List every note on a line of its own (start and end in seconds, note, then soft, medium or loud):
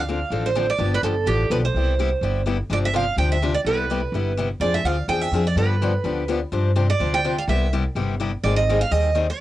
0.00 0.21 D2 medium
0.00 0.47 F5 medium
0.08 0.18 D3 medium
0.08 0.18 F3 medium
0.08 0.18 C4 medium
0.08 0.18 D4 medium
0.08 0.19 A4 medium
0.30 0.69 A1 medium
0.30 0.49 D3 medium
0.30 0.49 F3 medium
0.30 0.49 C4 medium
0.30 0.49 D4 medium
0.30 0.49 A4 medium
0.46 0.70 C5 medium
0.55 0.65 D3 medium
0.55 0.65 F3 medium
0.55 0.66 C4 medium
0.55 0.65 D4 medium
0.55 0.66 A4 medium
0.70 0.94 D5 medium
0.78 0.98 G1 medium
0.78 0.96 D3 medium
0.78 0.97 F3 medium
0.78 0.97 B3 medium
0.78 0.97 D4 medium
0.78 0.97 G4 medium
0.94 1.03 B4 medium
1.03 1.23 G1 medium
1.03 1.13 D3 medium
1.03 1.13 F3 medium
1.03 1.14 B3 medium
1.03 1.14 D4 medium
1.03 1.14 G4 medium
1.03 1.28 A4 medium
1.26 1.47 A1 medium
1.26 1.44 D3 medium
1.26 1.44 F3 medium
1.26 1.44 B3 medium
1.26 1.45 D4 medium
1.26 1.45 G4 medium
1.26 1.49 G4 medium
1.50 1.71 B1 medium
1.50 1.61 D3 medium
1.50 1.61 F3 medium
1.50 1.61 B3 medium
1.50 1.61 D4 medium
1.50 1.61 G4 medium
1.50 1.56 B4 medium
1.65 2.43 C5 medium
1.74 2.13 C2 medium
1.74 1.93 C3 medium
1.74 1.93 G3 medium
1.74 1.93 B3 medium
1.74 1.93 E4 medium
1.74 1.94 G4 medium
1.99 2.09 C3 medium
1.99 2.09 G3 medium
1.99 2.09 B3 medium
1.99 2.09 E4 medium
1.99 2.09 G4 loud
2.21 2.60 G1 medium
2.21 2.40 C3 medium
2.21 2.40 G3 medium
2.21 2.40 B3 medium
2.21 2.41 E4 medium
2.21 2.41 G4 medium
2.46 2.56 C3 medium
2.46 2.56 G3 medium
2.46 2.57 B3 medium
2.46 2.57 E4 medium
2.46 2.57 G4 medium
2.70 3.08 G1 medium
2.70 2.88 C3 medium
2.70 2.88 F3 medium
2.70 2.88 C4 medium
2.70 2.88 D4 medium
2.70 2.89 G4 medium
2.70 2.78 D5 medium
2.85 2.95 E5 medium
2.94 3.04 C3 medium
2.94 3.04 F3 medium
2.94 3.04 C4 medium
2.94 3.04 D4 medium
2.94 3.04 G4 medium
2.94 3.18 F5 medium
3.17 3.56 D2 medium
3.17 3.36 C3 medium
3.17 3.35 F3 medium
3.17 3.36 C4 medium
3.17 3.36 D4 medium
3.17 3.36 G4 medium
3.17 3.31 G5 medium
3.32 3.54 E5 medium
3.42 3.52 C3 medium
3.42 3.52 F3 medium
3.42 3.52 C4 medium
3.42 3.53 D4 medium
3.42 3.53 G4 medium
3.54 3.59 D5 medium
3.65 4.03 C2 medium
3.65 3.84 C3 medium
3.65 3.84 G3 medium
3.65 3.84 B3 medium
3.65 3.84 E4 medium
3.65 3.85 G4 medium
3.65 4.47 B4 medium
3.90 4.00 C3 medium
3.90 4.00 G3 medium
3.90 4.00 B3 medium
3.90 4.00 E4 medium
3.90 4.00 G4 medium
4.12 4.51 G1 medium
4.12 4.32 C3 medium
4.12 4.32 G3 medium
4.12 4.32 B3 medium
4.12 4.32 E4 medium
4.12 4.32 G4 medium
4.37 4.47 C3 medium
4.37 4.48 G3 medium
4.37 4.48 B3 medium
4.37 4.48 E4 medium
4.37 4.48 G4 medium
4.60 4.80 F2 medium
4.60 4.79 F3 medium
4.60 4.80 C4 medium
4.60 4.79 D4 medium
4.60 4.80 G#4 medium
4.60 4.75 D5 medium
4.74 4.85 E5 medium
4.84 5.05 D2 medium
4.84 4.95 F3 medium
4.84 4.96 C4 medium
4.84 4.96 D4 medium
4.84 4.96 G#4 medium
4.84 5.08 F5 medium
5.08 5.29 E2 medium
5.08 5.27 F3 medium
5.08 5.27 C4 medium
5.08 5.27 D4 medium
5.08 5.27 G#4 medium
5.08 5.21 G5 medium
5.21 5.47 E5 medium
5.32 5.53 F2 medium
5.32 5.43 F3 medium
5.32 5.43 C4 medium
5.32 5.44 D4 medium
5.32 5.44 G#4 medium
5.47 5.57 D5 medium
5.56 5.95 G2 medium
5.56 5.75 D3 medium
5.56 5.75 F3 medium
5.56 5.75 B3 medium
5.56 5.75 D4 medium
5.56 5.75 G4 medium
5.56 6.38 B4 medium
5.82 5.91 D3 medium
5.82 5.92 F3 medium
5.82 5.92 B3 medium
5.82 5.92 D4 medium
5.82 5.92 G4 medium
6.04 6.43 D2 medium
6.04 6.22 D3 medium
6.04 6.22 F3 medium
6.04 6.23 B3 medium
6.04 6.23 D4 medium
6.04 6.23 G4 medium
6.28 6.39 D3 medium
6.28 6.39 F3 medium
6.28 6.39 B3 medium
6.28 6.39 D4 medium
6.28 6.39 G4 medium
6.52 6.91 G2 medium
6.52 6.70 C3 medium
6.52 6.70 F3 medium
6.52 6.70 C4 medium
6.52 6.71 D4 medium
6.52 6.71 G4 medium
6.76 6.86 C3 medium
6.76 6.86 F3 medium
6.76 6.86 C4 medium
6.76 6.87 D4 medium
6.76 6.87 G4 medium
6.90 7.15 D5 medium
7.00 7.39 D2 medium
7.00 7.18 C3 medium
7.00 7.18 F3 medium
7.00 7.18 C4 medium
7.00 7.18 D4 medium
7.00 7.19 G4 medium
7.14 7.38 G5 medium
7.24 7.35 C3 medium
7.24 7.34 F3 medium
7.24 7.35 C4 medium
7.24 7.35 D4 medium
7.24 7.35 G4 medium
7.38 7.43 F5 medium
7.48 7.86 C2 medium
7.48 7.66 C3 medium
7.48 7.66 G3 medium
7.48 7.67 B3 medium
7.48 7.67 E4 medium
7.48 7.67 G4 medium
7.48 7.73 E5 medium
7.73 7.83 C3 medium
7.73 7.83 G3 medium
7.73 7.83 B3 medium
7.73 7.83 E4 medium
7.73 7.83 G4 medium
7.95 8.34 G1 medium
7.95 8.14 C3 medium
7.95 8.14 G3 medium
7.95 8.14 B3 medium
7.95 8.14 E4 medium
7.95 8.14 G4 medium
8.20 8.30 C3 medium
8.20 8.30 G3 medium
8.20 8.30 B3 medium
8.20 8.30 E4 medium
8.20 8.31 G4 medium
8.43 8.82 G#1 medium
8.43 8.62 D#3 medium
8.43 8.63 G3 medium
8.43 8.63 C4 medium
8.43 8.63 D#4 medium
8.43 8.63 G#4 medium
8.43 8.56 D5 medium
8.56 8.81 D#5 medium
8.69 8.79 D#3 medium
8.69 8.79 G3 medium
8.69 8.79 C4 medium
8.69 8.79 D#4 medium
8.69 8.80 G#4 medium
8.81 8.92 F5 medium
8.91 9.30 D#2 medium
8.91 9.09 D#3 medium
8.91 9.10 G3 medium
8.91 9.10 C4 medium
8.91 9.10 D#4 medium
8.91 9.10 G#4 medium
8.91 9.16 D#5 loud
9.15 9.25 D#3 medium
9.15 9.26 G3 medium
9.15 9.26 C4 medium
9.15 9.26 D#4 medium
9.15 9.26 G#4 medium
9.30 9.40 D5 medium